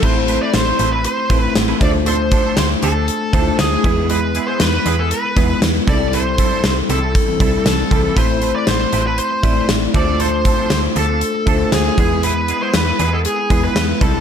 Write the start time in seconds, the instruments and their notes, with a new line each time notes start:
0.02 fm bass A1, clean electric guitar A3 C4 E4 B4, tine electric piano A3 C4 E4 B5, lead electric guitar C5, kick, crash
0.15 muted clean electric guitar stroke
0.28 clean electric guitar A3 C4 E4 B4, closed hi-hat
0.41 clean electric guitar A3 C4 E4 B4, lead electric guitar D5
0.54 fm bass A1, lead electric guitar C5, snare, closed hi-hat
0.66 muted clean electric guitar stroke
0.79 fm bass A1, clean electric guitar A3 C4 E4 B4, closed hi-hat
0.92 clean electric guitar A3 C4 E4 B4, lead electric guitar B4
1.04 lead electric guitar C5, muted clean electric guitar stroke, closed hi-hat
1.18 muted clean electric guitar stroke
1.30 fm bass A1, tine electric piano A3 C4 E4 B4, clean electric guitar A3 C4 E4 B4, kick, closed hi-hat
1.41 clean electric guitar A3 C4 E4 B4, lead electric guitar B4
1.55 fm bass A1, muted clean electric guitar stroke, snare, closed hi-hat
1.68 clean electric guitar A3 C4 E4 B4
1.80 fm bass D2, clean electric guitar F3 C4 D4 A4, tine electric piano A3 D4 F4 C5, lead electric guitar D5, kick, closed hi-hat
1.94 muted clean electric guitar stroke
2.06 clean electric guitar F3 C4 D4 A4, lead electric guitar C5, closed hi-hat
2.19 muted clean electric guitar stroke
2.31 clean electric guitar F3 C4 D4 A4, kick, closed hi-hat
2.44 clean electric guitar F3 C4 D4 A4
2.57 fm bass D2, lead electric guitar C5, muted clean electric guitar stroke, snare, closed hi-hat
2.70 muted clean electric guitar stroke
2.82 fm bass D2, clean electric guitar F3 C4 D4 A4, lead electric guitar A4, closed hi-hat
2.95 clean electric guitar F3 C4 D4 A4
3.08 muted clean electric guitar stroke, closed hi-hat
3.21 muted clean electric guitar stroke
3.33 fm bass D2, clean electric guitar F3 C4 D4 A4, tine electric piano A3 D4 E4 C5, kick, closed hi-hat
3.40 tine electric piano F4
3.46 clean electric guitar F3 C4 D4 A4
3.59 fm bass D2, lead electric guitar G#4, snare, closed hi-hat
3.72 muted clean electric guitar stroke
3.83 fm bass E2, tine electric piano G#3 B3 E4 B4, clean electric guitar G#3 B3 E4 G#4, kick, closed hi-hat
3.97 clean electric guitar G#3 B3 E4 G#4
4.10 clean electric guitar G#3 B3 E4 G#4, lead electric guitar B4, closed hi-hat
4.22 muted clean electric guitar stroke
4.35 clean electric guitar G#3 B3 E4 G#4, closed hi-hat
4.47 clean electric guitar G#3 B3 E4 G#4, lead electric guitar C5
4.60 fm bass E2, lead electric guitar B4, muted clean electric guitar stroke, snare, closed hi-hat
4.73 muted clean electric guitar stroke
4.85 fm bass E2, clean electric guitar G#3 B3 E4 G#4, closed hi-hat
4.98 clean electric guitar G#3 B3 E4 G#4, lead electric guitar A4
5.11 lead electric guitar B4, muted clean electric guitar stroke, closed hi-hat
5.24 muted clean electric guitar stroke
5.36 fm bass E2, tine electric piano G#3 B3 E4 B4, clean electric guitar G#3 B3 E4 G#4, kick, closed hi-hat
5.49 muted clean electric guitar stroke
5.62 fm bass E2, muted clean electric guitar stroke, snare, closed hi-hat
5.75 muted clean electric guitar stroke
5.87 fm bass C2, tine electric piano G3 C4 D#4 A4, clean electric guitar G3 C4 E4 A4, lead electric guitar D5, kick, closed hi-hat
5.93 tine electric piano E4
6.00 clean electric guitar G3 C4 E4 A4
6.13 clean electric guitar G3 C4 E4 A4, lead electric guitar C5, closed hi-hat
6.25 muted clean electric guitar stroke
6.38 clean electric guitar G3 C4 E4 A4, kick, closed hi-hat
6.51 clean electric guitar G3 C4 E4 A4
6.64 fm bass C2, lead electric guitar C5, muted clean electric guitar stroke, snare, closed hi-hat
6.77 muted clean electric guitar stroke
6.89 fm bass C2, analog polysynth E3 C4 A4, clean electric guitar G3 C4 E4 A4, lead electric guitar A4, closed hi-hat
7.02 clean electric guitar G3 C4 E4 A4
7.15 muted clean electric guitar stroke, kick, closed hi-hat
7.27 analog polysynth E3 C4 A4, muted clean electric guitar stroke
7.40 fm bass C2, tine electric piano G3 C4 E4 A4, clean electric guitar G3 C4 E4 A4, kick, closed hi-hat
7.53 clean electric guitar G3 C4 E4 A4
7.65 fm bass C2, analog polysynth E3 C4 A4, lead electric guitar A4, muted clean electric guitar stroke, snare, closed hi-hat
7.78 muted clean electric guitar stroke
7.91 fm bass C2, analog polysynth E3 C4 A4, clean electric guitar G3 C4 E4 A4, kick, closed hi-hat
8.03 clean electric guitar G3 C4 E4 A4
8.16 fm bass A1, tine electric piano A3 C4 E4 B5, clean electric guitar A3 C4 E4 B4, lead electric guitar C5, kick, closed hi-hat
8.29 muted clean electric guitar stroke
8.41 clean electric guitar A3 C4 E4 B4, closed hi-hat
8.54 clean electric guitar A3 C4 E4 B4, lead electric guitar D5
8.67 fm bass A1, lead electric guitar C5, muted clean electric guitar stroke, snare, closed hi-hat
8.80 muted clean electric guitar stroke
8.93 fm bass A1, clean electric guitar A3 C4 E4 B4, closed hi-hat
9.05 clean electric guitar A3 C4 E4 B4, lead electric guitar B4
9.18 lead electric guitar C5, muted clean electric guitar stroke, closed hi-hat
9.31 muted clean electric guitar stroke
9.43 fm bass A1, tine electric piano A3 C4 E4 D5, clean electric guitar A3 C4 E4 B4, kick, closed hi-hat
9.56 clean electric guitar A3 C4 E4 B4
9.69 fm bass A1, snare, closed hi-hat
9.82 muted clean electric guitar stroke
9.94 fm bass D2, clean electric guitar F3 C4 D4 A4, tine electric piano A3 D4 F4 C5, lead electric guitar D5, kick, closed hi-hat
10.07 clean electric guitar F3 C4 D4 A4
10.20 clean electric guitar F3 C4 D4 A4, lead electric guitar C5, closed hi-hat
10.33 muted clean electric guitar stroke
10.45 clean electric guitar F3 C4 D4 A4, kick, closed hi-hat
10.58 clean electric guitar F3 C4 D4 A4
10.70 fm bass D2, lead electric guitar C5, muted clean electric guitar stroke, snare, closed hi-hat
10.83 muted clean electric guitar stroke
10.96 fm bass D2, clean electric guitar F3 C4 D4 A4, lead electric guitar A4, closed hi-hat
11.08 clean electric guitar F3 C4 D4 A4
11.21 muted clean electric guitar stroke, closed hi-hat
11.34 muted clean electric guitar stroke
11.46 fm bass D2, clean electric guitar F3 C4 D4 A4, tine electric piano A3 D4 F4 C5, kick, closed hi-hat
11.60 clean electric guitar F3 C4 D4 A4
11.72 fm bass D2, lead electric guitar G#4, snare, closed hi-hat
11.85 muted clean electric guitar stroke
11.97 fm bass E2, tine electric piano G#3 B3 E4 B4, clean electric guitar G#3 B3 E4 G#4, kick, closed hi-hat
12.11 clean electric guitar G#3 B3 E4 G#4
12.23 clean electric guitar G#3 B3 E4 G#4, lead electric guitar B4, closed hi-hat
12.36 muted clean electric guitar stroke
12.48 clean electric guitar G#3 B3 E4 G#4, closed hi-hat
12.61 clean electric guitar G#3 B3 E4 G#4, lead electric guitar C5
12.74 fm bass E2, lead electric guitar B4, muted clean electric guitar stroke, snare, closed hi-hat
12.86 muted clean electric guitar stroke
12.99 fm bass E2, clean electric guitar G#3 B3 E4 G#4, closed hi-hat
13.12 clean electric guitar G#3 B3 E4 G#4, lead electric guitar A4
13.25 lead electric guitar G#4, muted clean electric guitar stroke, closed hi-hat
13.37 muted clean electric guitar stroke
13.50 fm bass E2, tine electric piano G#3 B3 E4 B4, clean electric guitar G#3 B3 E4 G#4, kick, closed hi-hat
13.63 clean electric guitar G#3 B3 E4 G#4, lead electric guitar B4
13.75 fm bass E2, snare, closed hi-hat
13.88 muted clean electric guitar stroke
14.01 fm bass C2, tine electric piano G3 C4 E4 A4, clean electric guitar G3 C4 E4 A4, lead electric guitar A4, kick, closed hi-hat
14.14 clean electric guitar G3 C4 E4 A4